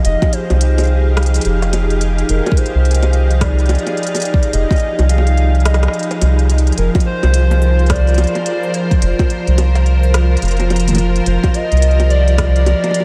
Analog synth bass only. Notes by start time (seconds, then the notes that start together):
0.05 F1
0.50 C2
1.45 F1
2.29 F1
2.75 C2
4.53 F1
4.99 C2
6.22 C2
6.78 F1
7.23 C2
9.02 F1
9.47 C2
10.42 F1
11.26 F1
11.72 C2